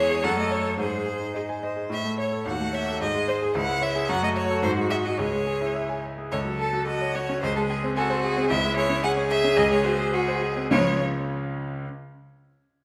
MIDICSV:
0, 0, Header, 1, 4, 480
1, 0, Start_track
1, 0, Key_signature, 4, "minor"
1, 0, Tempo, 549451
1, 697, Time_signature, 2, 2, 24, 8
1, 4538, Tempo, 558659
1, 6458, Tempo, 537153
1, 8378, Tempo, 561798
1, 11166, End_track
2, 0, Start_track
2, 0, Title_t, "Violin"
2, 0, Program_c, 0, 40
2, 0, Note_on_c, 0, 73, 127
2, 205, Note_on_c, 0, 78, 121
2, 218, Note_off_c, 0, 73, 0
2, 329, Note_off_c, 0, 78, 0
2, 342, Note_on_c, 0, 75, 109
2, 451, Note_on_c, 0, 73, 107
2, 464, Note_off_c, 0, 75, 0
2, 687, Note_off_c, 0, 73, 0
2, 693, Note_on_c, 0, 72, 106
2, 1414, Note_off_c, 0, 72, 0
2, 1679, Note_on_c, 0, 76, 114
2, 1902, Note_off_c, 0, 76, 0
2, 1914, Note_on_c, 0, 73, 97
2, 2147, Note_off_c, 0, 73, 0
2, 2152, Note_on_c, 0, 78, 104
2, 2392, Note_on_c, 0, 76, 112
2, 2405, Note_off_c, 0, 78, 0
2, 2633, Note_off_c, 0, 76, 0
2, 2638, Note_on_c, 0, 75, 117
2, 2873, Note_on_c, 0, 72, 101
2, 2886, Note_off_c, 0, 75, 0
2, 3099, Note_off_c, 0, 72, 0
2, 3105, Note_on_c, 0, 78, 127
2, 3340, Note_on_c, 0, 76, 114
2, 3354, Note_off_c, 0, 78, 0
2, 3569, Note_on_c, 0, 78, 127
2, 3582, Note_off_c, 0, 76, 0
2, 3694, Note_off_c, 0, 78, 0
2, 3700, Note_on_c, 0, 75, 119
2, 3747, Note_off_c, 0, 75, 0
2, 3809, Note_on_c, 0, 73, 118
2, 4036, Note_off_c, 0, 73, 0
2, 4041, Note_on_c, 0, 72, 125
2, 4111, Note_off_c, 0, 72, 0
2, 4283, Note_on_c, 0, 76, 124
2, 4334, Note_off_c, 0, 76, 0
2, 4416, Note_on_c, 0, 75, 95
2, 4523, Note_on_c, 0, 73, 112
2, 4536, Note_off_c, 0, 75, 0
2, 5254, Note_off_c, 0, 73, 0
2, 5502, Note_on_c, 0, 73, 118
2, 5571, Note_off_c, 0, 73, 0
2, 5739, Note_on_c, 0, 69, 102
2, 5971, Note_off_c, 0, 69, 0
2, 5976, Note_on_c, 0, 75, 108
2, 6217, Note_on_c, 0, 73, 112
2, 6230, Note_off_c, 0, 75, 0
2, 6445, Note_off_c, 0, 73, 0
2, 6450, Note_on_c, 0, 72, 118
2, 6570, Note_off_c, 0, 72, 0
2, 6576, Note_on_c, 0, 69, 97
2, 6624, Note_off_c, 0, 69, 0
2, 6695, Note_on_c, 0, 68, 101
2, 6766, Note_off_c, 0, 68, 0
2, 6932, Note_on_c, 0, 66, 127
2, 7403, Note_off_c, 0, 66, 0
2, 7410, Note_on_c, 0, 76, 127
2, 7644, Note_off_c, 0, 76, 0
2, 7649, Note_on_c, 0, 73, 127
2, 7884, Note_off_c, 0, 73, 0
2, 7889, Note_on_c, 0, 78, 127
2, 7961, Note_off_c, 0, 78, 0
2, 8129, Note_on_c, 0, 76, 127
2, 8365, Note_on_c, 0, 75, 127
2, 8378, Note_off_c, 0, 76, 0
2, 8488, Note_off_c, 0, 75, 0
2, 8496, Note_on_c, 0, 73, 110
2, 8604, Note_on_c, 0, 72, 115
2, 8617, Note_off_c, 0, 73, 0
2, 8849, Note_on_c, 0, 68, 123
2, 8862, Note_off_c, 0, 72, 0
2, 9337, Note_off_c, 0, 68, 0
2, 9342, Note_on_c, 0, 73, 120
2, 9609, Note_off_c, 0, 73, 0
2, 11166, End_track
3, 0, Start_track
3, 0, Title_t, "Cello"
3, 0, Program_c, 1, 42
3, 0, Note_on_c, 1, 68, 118
3, 208, Note_off_c, 1, 68, 0
3, 213, Note_on_c, 1, 69, 116
3, 686, Note_off_c, 1, 69, 0
3, 696, Note_on_c, 1, 68, 95
3, 1128, Note_off_c, 1, 68, 0
3, 1183, Note_on_c, 1, 68, 72
3, 1253, Note_off_c, 1, 68, 0
3, 1421, Note_on_c, 1, 72, 80
3, 1665, Note_off_c, 1, 72, 0
3, 2152, Note_on_c, 1, 66, 84
3, 2632, Note_on_c, 1, 68, 97
3, 2645, Note_off_c, 1, 66, 0
3, 3105, Note_on_c, 1, 64, 97
3, 3118, Note_off_c, 1, 68, 0
3, 3581, Note_off_c, 1, 64, 0
3, 3585, Note_on_c, 1, 66, 110
3, 4527, Note_on_c, 1, 68, 94
3, 4540, Note_off_c, 1, 66, 0
3, 5256, Note_off_c, 1, 68, 0
3, 5497, Note_on_c, 1, 69, 86
3, 5968, Note_on_c, 1, 66, 92
3, 5981, Note_off_c, 1, 69, 0
3, 6449, Note_off_c, 1, 66, 0
3, 6460, Note_on_c, 1, 68, 102
3, 6929, Note_off_c, 1, 68, 0
3, 6934, Note_on_c, 1, 69, 97
3, 7172, Note_off_c, 1, 69, 0
3, 7176, Note_on_c, 1, 68, 120
3, 7420, Note_on_c, 1, 64, 116
3, 7433, Note_off_c, 1, 68, 0
3, 7893, Note_on_c, 1, 68, 127
3, 7906, Note_off_c, 1, 64, 0
3, 8847, Note_off_c, 1, 68, 0
3, 8852, Note_on_c, 1, 66, 90
3, 9095, Note_off_c, 1, 66, 0
3, 9343, Note_on_c, 1, 53, 101
3, 9610, Note_off_c, 1, 53, 0
3, 11166, End_track
4, 0, Start_track
4, 0, Title_t, "Grand piano"
4, 0, Program_c, 2, 0
4, 0, Control_c, 2, 64, 127
4, 0, Note_on_c, 2, 40, 94
4, 0, Note_on_c, 2, 56, 72
4, 0, Note_on_c, 2, 73, 86
4, 87, Note_on_c, 2, 68, 80
4, 164, Note_off_c, 2, 73, 0
4, 196, Note_off_c, 2, 40, 0
4, 205, Note_on_c, 2, 42, 99
4, 210, Note_off_c, 2, 68, 0
4, 230, Control_c, 2, 64, 0
4, 238, Note_off_c, 2, 56, 0
4, 321, Note_on_c, 2, 57, 73
4, 382, Control_c, 2, 64, 127
4, 443, Note_on_c, 2, 73, 75
4, 520, Note_off_c, 2, 57, 0
4, 554, Note_on_c, 2, 69, 68
4, 643, Note_off_c, 2, 73, 0
4, 677, Note_off_c, 2, 42, 0
4, 677, Note_on_c, 2, 44, 78
4, 686, Note_off_c, 2, 69, 0
4, 713, Control_c, 2, 64, 0
4, 805, Note_on_c, 2, 56, 57
4, 841, Control_c, 2, 64, 127
4, 927, Note_on_c, 2, 68, 65
4, 1008, Note_off_c, 2, 56, 0
4, 1045, Note_on_c, 2, 63, 55
4, 1130, Note_off_c, 2, 68, 0
4, 1172, Note_on_c, 2, 75, 61
4, 1250, Note_off_c, 2, 63, 0
4, 1302, Note_on_c, 2, 80, 67
4, 1375, Note_off_c, 2, 75, 0
4, 1424, Note_on_c, 2, 75, 66
4, 1501, Note_off_c, 2, 80, 0
4, 1541, Note_on_c, 2, 68, 52
4, 1623, Note_off_c, 2, 75, 0
4, 1635, Note_off_c, 2, 44, 0
4, 1658, Note_on_c, 2, 45, 79
4, 1669, Note_off_c, 2, 68, 0
4, 1690, Control_c, 2, 64, 0
4, 1787, Note_on_c, 2, 57, 61
4, 1813, Control_c, 2, 64, 127
4, 1902, Note_on_c, 2, 73, 68
4, 1985, Note_off_c, 2, 57, 0
4, 2030, Note_on_c, 2, 69, 66
4, 2103, Note_off_c, 2, 73, 0
4, 2136, Note_off_c, 2, 45, 0
4, 2146, Note_on_c, 2, 39, 78
4, 2155, Note_off_c, 2, 69, 0
4, 2177, Control_c, 2, 64, 0
4, 2274, Note_on_c, 2, 57, 60
4, 2337, Control_c, 2, 64, 127
4, 2383, Note_on_c, 2, 73, 66
4, 2469, Note_off_c, 2, 57, 0
4, 2514, Note_on_c, 2, 69, 69
4, 2583, Note_off_c, 2, 73, 0
4, 2618, Note_off_c, 2, 39, 0
4, 2624, Note_on_c, 2, 44, 81
4, 2636, Note_off_c, 2, 69, 0
4, 2655, Control_c, 2, 64, 0
4, 2747, Note_on_c, 2, 56, 77
4, 2807, Control_c, 2, 64, 127
4, 2866, Note_on_c, 2, 72, 72
4, 2942, Note_off_c, 2, 56, 0
4, 2989, Note_on_c, 2, 68, 78
4, 3060, Note_off_c, 2, 72, 0
4, 3091, Note_off_c, 2, 44, 0
4, 3100, Note_on_c, 2, 37, 95
4, 3110, Note_off_c, 2, 68, 0
4, 3129, Control_c, 2, 64, 0
4, 3224, Note_on_c, 2, 56, 72
4, 3277, Control_c, 2, 64, 127
4, 3332, Note_on_c, 2, 73, 80
4, 3416, Note_off_c, 2, 56, 0
4, 3455, Note_on_c, 2, 68, 79
4, 3529, Note_off_c, 2, 73, 0
4, 3564, Note_off_c, 2, 37, 0
4, 3574, Note_on_c, 2, 42, 99
4, 3579, Note_off_c, 2, 68, 0
4, 3602, Control_c, 2, 64, 0
4, 3689, Note_on_c, 2, 57, 78
4, 3751, Control_c, 2, 64, 127
4, 3810, Note_on_c, 2, 73, 91
4, 3884, Note_off_c, 2, 57, 0
4, 3936, Note_on_c, 2, 69, 80
4, 4004, Note_off_c, 2, 73, 0
4, 4036, Note_off_c, 2, 42, 0
4, 4041, Note_on_c, 2, 44, 113
4, 4055, Note_off_c, 2, 69, 0
4, 4071, Control_c, 2, 64, 0
4, 4170, Note_on_c, 2, 56, 79
4, 4240, Control_c, 2, 64, 127
4, 4281, Note_on_c, 2, 68, 74
4, 4364, Note_off_c, 2, 56, 0
4, 4406, Note_on_c, 2, 66, 76
4, 4482, Note_off_c, 2, 68, 0
4, 4516, Note_off_c, 2, 44, 0
4, 4529, Note_on_c, 2, 37, 81
4, 4533, Note_off_c, 2, 66, 0
4, 4555, Control_c, 2, 64, 0
4, 4653, Note_on_c, 2, 56, 64
4, 4696, Control_c, 2, 64, 127
4, 4774, Note_on_c, 2, 68, 78
4, 4848, Note_off_c, 2, 56, 0
4, 4896, Note_on_c, 2, 64, 65
4, 4968, Note_off_c, 2, 68, 0
4, 5020, Note_on_c, 2, 76, 69
4, 5089, Note_off_c, 2, 64, 0
4, 5136, Note_on_c, 2, 80, 70
4, 5212, Note_off_c, 2, 76, 0
4, 5263, Note_on_c, 2, 76, 58
4, 5333, Note_off_c, 2, 80, 0
4, 5385, Note_on_c, 2, 68, 61
4, 5457, Note_off_c, 2, 76, 0
4, 5471, Note_off_c, 2, 37, 0
4, 5505, Note_off_c, 2, 68, 0
4, 5506, Note_on_c, 2, 37, 84
4, 5521, Control_c, 2, 64, 0
4, 5617, Note_on_c, 2, 54, 65
4, 5677, Control_c, 2, 64, 127
4, 5739, Note_on_c, 2, 69, 70
4, 5813, Note_off_c, 2, 54, 0
4, 5856, Note_on_c, 2, 66, 70
4, 5933, Note_off_c, 2, 69, 0
4, 5979, Note_on_c, 2, 81, 69
4, 6051, Note_off_c, 2, 66, 0
4, 6100, Note_on_c, 2, 73, 71
4, 6171, Note_off_c, 2, 81, 0
4, 6221, Note_on_c, 2, 66, 72
4, 6291, Note_off_c, 2, 73, 0
4, 6340, Note_on_c, 2, 61, 74
4, 6410, Note_off_c, 2, 66, 0
4, 6429, Note_off_c, 2, 37, 0
4, 6457, Note_off_c, 2, 61, 0
4, 6457, Note_on_c, 2, 37, 96
4, 6475, Control_c, 2, 64, 0
4, 6578, Note_on_c, 2, 56, 82
4, 6599, Control_c, 2, 64, 127
4, 6702, Note_on_c, 2, 68, 75
4, 6771, Note_off_c, 2, 56, 0
4, 6824, Note_on_c, 2, 60, 75
4, 6894, Note_off_c, 2, 68, 0
4, 6943, Note_on_c, 2, 80, 100
4, 7014, Note_off_c, 2, 60, 0
4, 7058, Note_on_c, 2, 72, 86
4, 7133, Note_off_c, 2, 80, 0
4, 7182, Note_on_c, 2, 68, 87
4, 7250, Note_off_c, 2, 72, 0
4, 7300, Note_on_c, 2, 60, 81
4, 7371, Note_off_c, 2, 68, 0
4, 7389, Note_off_c, 2, 37, 0
4, 7417, Note_on_c, 2, 37, 107
4, 7418, Note_off_c, 2, 60, 0
4, 7433, Control_c, 2, 64, 0
4, 7535, Note_on_c, 2, 56, 90
4, 7551, Control_c, 2, 64, 127
4, 7656, Note_on_c, 2, 68, 95
4, 7726, Note_off_c, 2, 56, 0
4, 7768, Note_on_c, 2, 61, 87
4, 7847, Note_off_c, 2, 68, 0
4, 7894, Note_on_c, 2, 80, 98
4, 7963, Note_off_c, 2, 61, 0
4, 8011, Note_on_c, 2, 73, 95
4, 8087, Note_off_c, 2, 80, 0
4, 8136, Note_on_c, 2, 68, 85
4, 8205, Note_off_c, 2, 73, 0
4, 8258, Note_on_c, 2, 61, 79
4, 8329, Note_off_c, 2, 68, 0
4, 8348, Note_off_c, 2, 37, 0
4, 8371, Note_on_c, 2, 37, 114
4, 8378, Note_off_c, 2, 61, 0
4, 8392, Control_c, 2, 64, 0
4, 8490, Note_on_c, 2, 56, 81
4, 8516, Control_c, 2, 64, 127
4, 8609, Note_on_c, 2, 66, 93
4, 8682, Note_off_c, 2, 56, 0
4, 8724, Note_on_c, 2, 68, 84
4, 8802, Note_off_c, 2, 66, 0
4, 8853, Note_on_c, 2, 78, 76
4, 8922, Note_off_c, 2, 68, 0
4, 8979, Note_on_c, 2, 72, 77
4, 9050, Note_off_c, 2, 78, 0
4, 9097, Note_on_c, 2, 68, 74
4, 9176, Note_off_c, 2, 72, 0
4, 9220, Note_on_c, 2, 60, 62
4, 9295, Note_off_c, 2, 68, 0
4, 9313, Note_off_c, 2, 37, 0
4, 9342, Note_on_c, 2, 73, 92
4, 9343, Note_off_c, 2, 60, 0
4, 9344, Note_on_c, 2, 37, 84
4, 9344, Note_on_c, 2, 56, 86
4, 9344, Note_on_c, 2, 65, 84
4, 9345, Note_on_c, 2, 49, 96
4, 9347, Note_on_c, 2, 61, 89
4, 9362, Control_c, 2, 64, 0
4, 9483, Control_c, 2, 64, 127
4, 9609, Note_off_c, 2, 73, 0
4, 9610, Note_off_c, 2, 37, 0
4, 9610, Note_off_c, 2, 56, 0
4, 9610, Note_off_c, 2, 65, 0
4, 9611, Note_off_c, 2, 49, 0
4, 9612, Note_off_c, 2, 61, 0
4, 10317, Control_c, 2, 64, 0
4, 11166, End_track
0, 0, End_of_file